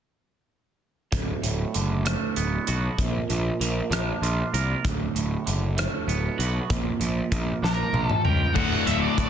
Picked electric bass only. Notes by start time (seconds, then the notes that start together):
1.12 D1
1.44 D1
1.76 F#1
2.37 D1
2.68 B1
2.98 A#1
3.30 A#1
3.61 A#1
3.91 A#1
4.22 A#1
4.54 C2
4.85 D1
5.16 D1
5.47 F#1
6.08 D1
6.39 B1
6.70 A#1
7.00 A#1
7.32 A#1
7.62 A#1
7.93 A#1
8.25 C#2
8.56 D1
8.86 D1
9.18 D1